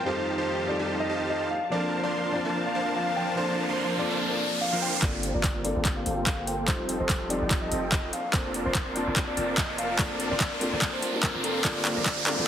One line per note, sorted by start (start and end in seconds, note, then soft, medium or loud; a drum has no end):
0.04 1.49 F2 medium
0.04 1.49 D#3 medium
0.04 0.65 G3 medium
0.04 1.49 A3 medium
0.04 0.65 C4 medium
0.04 0.66 D#4 medium
0.04 0.35 D#4 medium
0.04 0.66 F4 medium
0.04 0.35 G4 medium
0.04 1.49 G4 medium
0.04 0.67 A4 medium
0.04 0.26 C5 medium
0.04 0.35 C5 medium
0.04 0.35 F5 medium
0.04 0.35 A5 loud
0.38 0.77 D#4 medium
0.38 0.77 G4 medium
0.38 0.57 C5 medium
0.38 0.77 C5 medium
0.38 0.77 F5 medium
0.38 0.77 A5 loud
0.66 1.49 G3 medium
0.66 1.49 C4 medium
0.66 1.50 D#4 medium
0.66 1.50 F4 medium
0.66 0.88 D5 medium
0.70 1.51 A4 loud
0.79 1.08 D#4 medium
0.79 1.08 G4 medium
0.79 1.08 C5 medium
0.79 1.08 F5 medium
0.79 1.08 A5 medium
1.00 1.19 D#5 medium
1.09 1.50 D#4 medium
1.09 1.50 G4 medium
1.09 1.50 C5 medium
1.09 1.50 F5 medium
1.09 1.50 A5 loud
1.30 1.44 D#5 medium
1.51 4.99 F3 medium
1.51 4.99 A#3 medium
1.51 4.99 D4 medium
1.51 1.64 F5 medium
1.51 4.99 A5 medium
1.69 2.30 F3 medium
1.69 2.01 F3 loud
1.69 2.31 A#3 medium
1.69 2.31 C4 medium
1.69 2.01 D4 medium
1.69 2.31 D4 medium
1.69 2.32 F4 medium
1.69 2.32 A4 medium
1.69 2.01 A#4 medium
1.69 2.01 C5 medium
1.69 1.91 D5 medium
1.69 2.01 F5 medium
1.69 2.01 A5 loud
1.69 riser medium
2.03 2.42 F3 medium
2.03 2.42 D4 medium
2.03 2.42 A#4 medium
2.03 2.42 C5 medium
2.03 2.23 D5 medium
2.03 2.42 F5 medium
2.03 2.42 C6 loud
2.32 3.34 F3 medium
2.32 3.34 A#3 medium
2.32 3.35 C4 medium
2.32 3.35 D4 medium
2.32 3.35 F4 medium
2.32 2.53 D5 medium
2.32 3.36 A5 loud
2.45 2.73 F3 medium
2.45 2.73 D4 medium
2.45 2.73 A#4 medium
2.45 2.73 C5 medium
2.45 2.73 F5 medium
2.45 2.73 A5 medium
2.65 2.85 F5 medium
2.75 3.35 F3 medium
2.75 3.35 D4 medium
2.75 3.35 A#4 medium
2.75 3.35 C5 medium
2.75 3.35 F5 medium
2.75 3.35 A5 loud
2.96 3.09 F5 medium
3.16 3.30 G5 medium
3.35 3.96 F3 medium
3.35 3.66 F3 medium
3.35 3.96 A#3 medium
3.35 3.97 C4 medium
3.35 3.66 D4 medium
3.35 3.97 D4 medium
3.35 3.97 F4 medium
3.35 3.98 A4 medium
3.35 3.66 A#4 medium
3.35 3.56 C5 medium
3.35 3.66 C5 medium
3.35 3.66 F5 medium
3.35 3.66 A5 loud
3.69 4.08 F3 medium
3.69 4.08 D4 medium
3.69 4.08 A#4 medium
3.69 3.88 C5 medium
3.69 4.08 C5 medium
3.69 4.08 F5 medium
3.69 4.08 C6 loud
3.97 4.99 F3 medium
3.97 4.99 A#3 medium
3.97 5.00 C4 medium
3.97 5.01 D4 medium
3.97 5.01 F4 medium
3.97 4.19 D5 medium
4.01 5.01 A4 loud
4.10 4.39 F3 medium
4.10 4.39 D4 medium
4.10 4.39 A#4 medium
4.10 4.39 C5 medium
4.10 4.39 F5 medium
4.10 4.39 A5 medium
4.31 4.50 D5 medium
4.61 4.75 F5 medium
4.72 5.00 F3 medium
4.72 5.00 D4 medium
4.72 5.00 A#4 medium
4.72 5.00 C5 medium
4.72 5.00 F5 medium
4.72 5.00 C6 loud
4.82 4.95 G5 medium
5.00 5.32 G1 loud
5.00 5.61 A#3 medium
5.00 5.32 A#3 loud
5.00 6.66 A#3 medium
5.00 5.62 C4 medium
5.00 5.62 D4 medium
5.00 6.66 F4 medium
5.00 5.63 F4 medium
5.00 6.66 G4 medium
5.00 5.63 A4 medium
5.00 5.22 D5 medium
5.00 kick medium
5.00 clap soft
5.00 closed hi-hat medium
5.00 riser medium
5.23 closed hi-hat medium
5.34 5.74 G1 loud
5.34 5.73 A#3 medium
5.34 5.73 F4 medium
5.34 5.73 A4 medium
5.34 5.73 C5 medium
5.34 5.54 D5 medium
5.34 5.73 A#5 loud
5.44 kick loud
5.44 clap soft
5.44 closed hi-hat medium
5.63 6.65 A#3 medium
5.63 6.65 C4 medium
5.63 6.66 D4 medium
5.63 6.66 F4 medium
5.63 5.84 D5 medium
5.63 closed hi-hat medium
5.67 6.67 A4 loud
5.76 6.04 G1 loud
5.76 6.04 A#3 medium
5.76 6.04 F4 medium
5.76 6.04 A4 medium
5.76 6.04 C5 medium
5.76 6.04 G5 medium
5.85 kick medium
5.85 clap soft
5.85 closed hi-hat medium
5.96 6.16 F5 medium
6.06 6.70 G1 loud
6.06 6.66 A#3 medium
6.06 6.66 F4 medium
6.06 6.66 A4 medium
6.06 6.66 C5 medium
6.06 6.66 G5 loud
6.06 closed hi-hat medium
6.27 6.40 F5 medium
6.27 kick loud
6.27 clap medium
6.27 closed hi-hat medium
6.47 6.61 G5 medium
6.47 closed hi-hat medium
6.66 6.98 F1 loud
6.66 8.11 F3 medium
6.66 7.27 G3 medium
6.66 7.27 C4 medium
6.66 8.11 D#4 medium
6.66 7.28 D#4 medium
6.66 6.97 F4 medium
6.66 7.28 F4 medium
6.66 8.11 G4 medium
6.66 8.11 A4 medium
6.66 6.97 A4 medium
6.66 6.87 C5 medium
6.66 6.97 D#5 medium
6.66 kick medium
6.66 clap soft
6.66 closed hi-hat medium
6.70 7.29 A4 medium
6.89 closed hi-hat medium
7.00 7.39 F1 medium
7.00 7.39 C4 loud
7.00 7.39 F4 medium
7.00 7.39 A4 medium
7.00 7.19 C5 medium
7.00 7.39 D#5 medium
7.00 7.39 C6 loud
7.09 kick medium
7.09 clap medium
7.09 closed hi-hat medium
7.28 8.11 G3 loud
7.28 8.11 C4 medium
7.28 8.12 D#4 medium
7.28 8.12 F4 medium
7.28 7.50 D5 medium
7.28 closed hi-hat medium
7.32 8.13 A4 loud
7.41 7.70 F1 loud
7.41 7.70 C4 medium
7.41 7.70 F4 medium
7.41 7.70 A4 medium
7.41 7.70 D#5 medium
7.41 7.70 G5 medium
7.51 kick loud
7.51 clap medium
7.51 closed hi-hat medium
7.62 7.81 D#5 medium
7.71 8.10 F1 loud
7.71 8.12 C4 loud
7.71 8.12 F4 medium
7.71 8.12 A4 medium
7.71 8.12 D#5 medium
7.71 8.12 G5 loud
7.71 closed hi-hat medium
7.92 8.06 D#5 medium
7.92 kick loud
7.92 clap medium
7.92 closed hi-hat medium
8.13 12.48 A#3 medium
8.13 11.61 D4 medium
8.13 8.26 F5 medium
8.13 closed hi-hat medium
8.32 8.63 F1 loud
8.32 8.92 A#3 medium
8.32 8.93 C4 medium
8.32 8.63 C4 medium
8.32 8.93 D4 medium
8.32 8.63 F4 medium
8.32 8.94 F4 medium
8.32 8.94 A4 medium
8.32 8.63 A#4 medium
8.32 8.53 C5 medium
8.32 8.63 D5 medium
8.32 8.63 A5 loud
8.32 kick medium
8.32 clap medium
8.32 closed hi-hat medium
8.54 closed hi-hat medium
8.65 9.05 F1 loud
8.65 9.04 C4 medium
8.65 9.04 F4 medium
8.65 9.04 A#4 medium
8.65 8.85 C5 medium
8.65 9.04 D5 medium
8.65 9.04 C6 loud
8.75 kick loud
8.75 clap medium
8.75 closed hi-hat medium
8.94 9.96 A#3 loud
8.94 9.96 C4 medium
8.94 9.97 D4 medium
8.94 9.97 F4 medium
8.94 9.15 D5 medium
8.94 closed hi-hat medium
8.98 9.98 A5 loud
9.07 9.35 F1 medium
9.07 9.35 C4 medium
9.07 9.35 F4 medium
9.07 9.35 A#4 medium
9.07 9.35 D5 medium
9.07 9.35 A5 medium
9.16 kick loud
9.16 clap medium
9.16 closed hi-hat medium
9.27 9.47 D5 medium
9.37 9.97 F1 loud
9.37 9.97 C4 loud
9.37 9.97 F4 medium
9.37 9.97 A#4 medium
9.37 9.97 D5 medium
9.37 9.97 A5 loud
9.37 closed hi-hat medium
9.58 9.71 D#5 medium
9.58 kick loud
9.58 clap medium
9.58 closed hi-hat medium
9.78 9.92 F5 medium
9.78 closed hi-hat medium
9.97 10.29 F1 loud
9.97 10.58 A#3 medium
9.97 10.58 C4 medium
9.97 10.59 D4 medium
9.97 10.59 F4 medium
9.97 10.60 A4 medium
9.97 10.19 D5 loud
9.97 kick medium
9.97 clap medium
9.97 closed hi-hat medium
10.20 closed hi-hat medium
10.31 10.70 F1 medium
10.31 10.70 C4 loud
10.31 10.70 F4 medium
10.31 10.70 A#4 medium
10.31 10.50 D5 medium
10.31 10.70 D5 medium
10.31 10.70 C6 loud
10.40 kick loud
10.40 clap medium
10.40 closed hi-hat medium
10.60 11.00 A#3 medium
10.60 11.00 C4 medium
10.60 11.01 D4 medium
10.60 11.01 F4 medium
10.60 11.01 A4 loud
10.60 10.81 D5 medium
10.60 closed hi-hat medium
10.72 10.99 F1 loud
10.72 11.01 C4 medium
10.72 11.01 F4 medium
10.72 11.01 A#4 medium
10.72 11.01 D5 medium
10.72 11.01 A5 loud
10.82 kick loud
10.82 clap medium
10.82 closed hi-hat medium
10.93 11.12 C5 medium
11.01 11.10 A#3 medium
11.01 11.11 C4 medium
11.01 11.11 D4 medium
11.01 11.11 F4 medium
11.01 11.12 C5 medium
11.01 closed hi-hat medium
11.12 11.61 A#3 loud
11.12 11.62 C4 medium
11.12 11.62 D4 medium
11.12 11.63 F4 medium
11.12 11.63 A#4 loud
11.23 11.37 A#4 medium
11.23 kick loud
11.23 clap medium
11.23 closed hi-hat medium
11.34 11.63 F1 loud
11.34 11.62 C4 medium
11.34 11.62 F4 medium
11.34 11.62 A#4 medium
11.34 11.62 D5 medium
11.34 11.62 C6 loud
11.44 11.57 A4 medium
11.44 closed hi-hat medium
11.63 11.94 G1 loud
11.63 12.48 G3 medium
11.63 12.23 A#3 medium
11.63 12.24 C4 medium
11.63 12.24 D4 medium
11.63 12.48 F4 medium
11.63 12.25 F4 medium
11.63 12.25 A4 medium
11.63 11.84 D5 loud
11.63 kick loud
11.63 clap medium
11.63 closed hi-hat medium
11.85 clap medium
11.85 closed hi-hat medium
11.96 12.36 G1 medium
11.96 12.35 A#3 loud
11.96 12.35 F4 medium
11.96 12.35 A4 medium
11.96 12.35 C5 medium
11.96 12.16 D5 medium
11.96 12.35 A#5 loud
12.06 kick loud
12.06 clap medium
12.06 closed hi-hat medium
12.25 12.48 A#3 medium
12.25 12.48 C4 medium
12.25 12.48 D4 medium
12.25 12.48 F4 medium
12.25 12.48 A4 loud
12.25 12.46 D5 medium
12.25 clap medium
12.25 closed hi-hat medium
12.38 12.48 G1 loud
12.38 12.48 A#3 medium
12.38 12.48 F4 medium
12.38 12.48 A4 medium
12.38 12.48 C5 medium
12.38 12.48 G5 loud